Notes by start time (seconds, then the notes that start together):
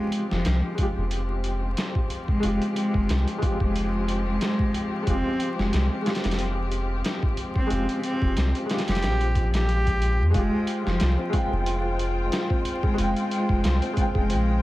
Already playing: F3 G#3 C4 F4 G4 F5
0.12 closed hi-hat
0.31 F1 F3, snare
0.45 C2, snare, closed hi-hat
0.75 G#3 F4, kick, closed hi-hat
0.82 G4
0.97 F1
1.11 closed hi-hat
1.44 closed hi-hat
1.77 snare, closed hi-hat
1.95 kick
2.10 closed hi-hat
2.28 G#3, kick
2.40 F1 G#3 F4, closed hi-hat
2.48 G4
2.62 closed hi-hat
2.76 G#3, closed hi-hat
2.94 F1, kick
3.09 C2, snare, closed hi-hat
3.28 closed hi-hat
3.38 G#3 F4, kick
3.43 G4, closed hi-hat
3.60 F1 G#3, kick
3.76 closed hi-hat
4.08 closed hi-hat
4.27 G#3
4.41 snare, closed hi-hat
4.59 kick
4.74 closed hi-hat
5.03 G#3 F4
5.07 F1 C4 G4, kick, closed hi-hat
5.40 closed hi-hat
5.59 F1 G#3, snare
5.73 C2, snare, closed hi-hat
6.02 G#3 F4
6.06 G4, snare, closed hi-hat
6.15 snare, closed hi-hat
6.24 F1, snare, closed hi-hat
6.31 snare, closed hi-hat
6.39 closed hi-hat
6.71 closed hi-hat
7.04 snare, closed hi-hat
7.23 kick
7.37 closed hi-hat
7.56 C4, kick
7.67 G#3 F4, closed hi-hat
7.71 F1 G4
7.89 closed hi-hat
8.03 C4, closed hi-hat
8.22 F1, kick
8.37 C2, snare, closed hi-hat
8.55 closed hi-hat
8.66 G#3 F4, closed hi-hat
8.71 G4, snare
8.78 snare, closed hi-hat
8.88 F1 G4, snare, closed hi-hat
8.95 snare, closed hi-hat
9.03 A#1, snare, closed hi-hat
9.21 closed hi-hat
9.35 kick, closed hi-hat
9.54 G4, snare, closed hi-hat
9.69 closed hi-hat
9.87 kick, closed hi-hat
10.02 closed hi-hat
10.20 F2
10.30 G#3 F4 C5 G5, kick, closed hi-hat
10.34 F1 G#3 F4 G4
10.67 closed hi-hat
10.86 F1 F3, snare
11.00 C2 F4, snare, closed hi-hat
11.18 C4
11.30 G#3 F4, kick, closed hi-hat
11.37 G5
11.51 F1 G#4
11.66 F4, closed hi-hat
11.99 closed hi-hat
12.32 F4, snare, closed hi-hat
12.50 C4, kick
12.65 closed hi-hat
12.83 G#3 G#4, kick
12.94 G#3 F4
12.98 F1 G5, closed hi-hat
13.16 closed hi-hat
13.31 G#3, closed hi-hat
13.49 F1, kick
13.64 C2 F4, snare, closed hi-hat
13.82 C4, closed hi-hat
13.93 G#3 F4, kick, closed hi-hat
14.01 G5
14.15 F1 G#3 G#4, kick
14.30 A#1 F4, closed hi-hat